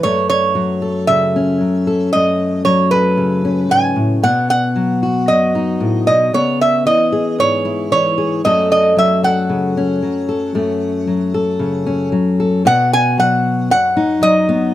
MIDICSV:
0, 0, Header, 1, 3, 480
1, 0, Start_track
1, 0, Tempo, 525394
1, 26, Time_signature, 4, 2, 24, 8
1, 13468, End_track
2, 0, Start_track
2, 0, Title_t, "Resonator guitar played with a steel bar"
2, 0, Program_c, 0, 25
2, 30, Note_on_c, 0, 73, 78
2, 259, Note_off_c, 0, 73, 0
2, 270, Note_on_c, 0, 73, 79
2, 951, Note_off_c, 0, 73, 0
2, 981, Note_on_c, 0, 76, 79
2, 1907, Note_off_c, 0, 76, 0
2, 1943, Note_on_c, 0, 75, 83
2, 2415, Note_off_c, 0, 75, 0
2, 2419, Note_on_c, 0, 73, 70
2, 2646, Note_off_c, 0, 73, 0
2, 2658, Note_on_c, 0, 71, 76
2, 3391, Note_on_c, 0, 80, 90
2, 3405, Note_off_c, 0, 71, 0
2, 3865, Note_off_c, 0, 80, 0
2, 3869, Note_on_c, 0, 78, 89
2, 4101, Note_off_c, 0, 78, 0
2, 4112, Note_on_c, 0, 78, 82
2, 4824, Note_on_c, 0, 75, 75
2, 4852, Note_off_c, 0, 78, 0
2, 5535, Note_off_c, 0, 75, 0
2, 5546, Note_on_c, 0, 75, 77
2, 5770, Note_off_c, 0, 75, 0
2, 5795, Note_on_c, 0, 73, 79
2, 6015, Note_off_c, 0, 73, 0
2, 6043, Note_on_c, 0, 76, 75
2, 6269, Note_off_c, 0, 76, 0
2, 6273, Note_on_c, 0, 75, 78
2, 6717, Note_off_c, 0, 75, 0
2, 6759, Note_on_c, 0, 73, 79
2, 7225, Note_off_c, 0, 73, 0
2, 7236, Note_on_c, 0, 73, 80
2, 7679, Note_off_c, 0, 73, 0
2, 7718, Note_on_c, 0, 75, 83
2, 7953, Note_off_c, 0, 75, 0
2, 7964, Note_on_c, 0, 75, 75
2, 8181, Note_off_c, 0, 75, 0
2, 8208, Note_on_c, 0, 76, 73
2, 8440, Note_off_c, 0, 76, 0
2, 8444, Note_on_c, 0, 78, 74
2, 11041, Note_off_c, 0, 78, 0
2, 11572, Note_on_c, 0, 78, 95
2, 11808, Note_off_c, 0, 78, 0
2, 11816, Note_on_c, 0, 80, 99
2, 12050, Note_off_c, 0, 80, 0
2, 12056, Note_on_c, 0, 78, 84
2, 12517, Note_off_c, 0, 78, 0
2, 12528, Note_on_c, 0, 78, 93
2, 12997, Note_on_c, 0, 75, 90
2, 13012, Note_off_c, 0, 78, 0
2, 13468, Note_off_c, 0, 75, 0
2, 13468, End_track
3, 0, Start_track
3, 0, Title_t, "Steel-string acoustic guitar"
3, 0, Program_c, 1, 25
3, 35, Note_on_c, 1, 42, 67
3, 40, Note_on_c, 1, 57, 52
3, 503, Note_on_c, 1, 54, 54
3, 749, Note_on_c, 1, 69, 51
3, 991, Note_on_c, 1, 49, 51
3, 1242, Note_on_c, 1, 61, 55
3, 1462, Note_off_c, 1, 54, 0
3, 1465, Note_on_c, 1, 54, 50
3, 1469, Note_off_c, 1, 49, 0
3, 1699, Note_off_c, 1, 69, 0
3, 1710, Note_on_c, 1, 69, 57
3, 1919, Note_off_c, 1, 69, 0
3, 1939, Note_off_c, 1, 42, 0
3, 1947, Note_off_c, 1, 57, 0
3, 1950, Note_on_c, 1, 42, 63
3, 1958, Note_on_c, 1, 57, 51
3, 2418, Note_off_c, 1, 54, 0
3, 2421, Note_on_c, 1, 54, 54
3, 2670, Note_on_c, 1, 69, 52
3, 2898, Note_on_c, 1, 49, 53
3, 3139, Note_off_c, 1, 61, 0
3, 3150, Note_on_c, 1, 61, 53
3, 3371, Note_off_c, 1, 42, 0
3, 3375, Note_on_c, 1, 44, 49
3, 3614, Note_off_c, 1, 44, 0
3, 3618, Note_on_c, 1, 45, 53
3, 3834, Note_off_c, 1, 49, 0
3, 3836, Note_off_c, 1, 54, 0
3, 3840, Note_off_c, 1, 69, 0
3, 3863, Note_off_c, 1, 45, 0
3, 3864, Note_on_c, 1, 47, 64
3, 3868, Note_off_c, 1, 57, 0
3, 3869, Note_off_c, 1, 61, 0
3, 3872, Note_on_c, 1, 59, 50
3, 4346, Note_on_c, 1, 54, 53
3, 4593, Note_on_c, 1, 66, 57
3, 4820, Note_on_c, 1, 42, 54
3, 4826, Note_off_c, 1, 47, 0
3, 5071, Note_on_c, 1, 63, 57
3, 5299, Note_off_c, 1, 42, 0
3, 5302, Note_on_c, 1, 45, 54
3, 5545, Note_off_c, 1, 45, 0
3, 5551, Note_on_c, 1, 47, 52
3, 5759, Note_off_c, 1, 54, 0
3, 5761, Note_off_c, 1, 63, 0
3, 5762, Note_off_c, 1, 59, 0
3, 5783, Note_off_c, 1, 47, 0
3, 5786, Note_on_c, 1, 49, 60
3, 5791, Note_off_c, 1, 66, 0
3, 5792, Note_on_c, 1, 59, 53
3, 6264, Note_on_c, 1, 52, 51
3, 6268, Note_off_c, 1, 49, 0
3, 6508, Note_on_c, 1, 68, 54
3, 6746, Note_on_c, 1, 44, 54
3, 6989, Note_on_c, 1, 64, 52
3, 7220, Note_off_c, 1, 52, 0
3, 7231, Note_on_c, 1, 52, 55
3, 7460, Note_off_c, 1, 68, 0
3, 7471, Note_on_c, 1, 68, 59
3, 7679, Note_off_c, 1, 44, 0
3, 7681, Note_off_c, 1, 64, 0
3, 7682, Note_off_c, 1, 59, 0
3, 7682, Note_off_c, 1, 68, 0
3, 7711, Note_off_c, 1, 52, 0
3, 7713, Note_on_c, 1, 42, 65
3, 7720, Note_on_c, 1, 54, 51
3, 7726, Note_on_c, 1, 57, 57
3, 7733, Note_on_c, 1, 61, 52
3, 7738, Note_on_c, 1, 69, 62
3, 8188, Note_off_c, 1, 54, 0
3, 8191, Note_on_c, 1, 54, 53
3, 8432, Note_off_c, 1, 69, 0
3, 8436, Note_on_c, 1, 69, 53
3, 8675, Note_on_c, 1, 49, 55
3, 8918, Note_off_c, 1, 61, 0
3, 8929, Note_on_c, 1, 61, 56
3, 9153, Note_off_c, 1, 49, 0
3, 9156, Note_off_c, 1, 54, 0
3, 9160, Note_on_c, 1, 54, 50
3, 9387, Note_off_c, 1, 69, 0
3, 9398, Note_on_c, 1, 69, 54
3, 9606, Note_off_c, 1, 69, 0
3, 9626, Note_off_c, 1, 42, 0
3, 9628, Note_off_c, 1, 57, 0
3, 9637, Note_on_c, 1, 42, 68
3, 9641, Note_on_c, 1, 57, 52
3, 10113, Note_off_c, 1, 54, 0
3, 10117, Note_on_c, 1, 54, 48
3, 10363, Note_on_c, 1, 69, 57
3, 10591, Note_on_c, 1, 49, 56
3, 10829, Note_off_c, 1, 61, 0
3, 10839, Note_on_c, 1, 61, 58
3, 11063, Note_off_c, 1, 54, 0
3, 11071, Note_off_c, 1, 49, 0
3, 11074, Note_on_c, 1, 54, 52
3, 11317, Note_off_c, 1, 69, 0
3, 11327, Note_on_c, 1, 69, 54
3, 11523, Note_off_c, 1, 54, 0
3, 11530, Note_off_c, 1, 69, 0
3, 11554, Note_off_c, 1, 42, 0
3, 11555, Note_off_c, 1, 57, 0
3, 11555, Note_off_c, 1, 61, 0
3, 11557, Note_on_c, 1, 47, 75
3, 11563, Note_on_c, 1, 66, 71
3, 12038, Note_on_c, 1, 54, 58
3, 12514, Note_off_c, 1, 47, 0
3, 12520, Note_on_c, 1, 42, 59
3, 12759, Note_on_c, 1, 63, 67
3, 12976, Note_off_c, 1, 54, 0
3, 12987, Note_on_c, 1, 54, 62
3, 13236, Note_on_c, 1, 59, 58
3, 13438, Note_off_c, 1, 54, 0
3, 13443, Note_off_c, 1, 59, 0
3, 13444, Note_off_c, 1, 63, 0
3, 13467, Note_off_c, 1, 66, 0
3, 13468, Note_off_c, 1, 42, 0
3, 13468, End_track
0, 0, End_of_file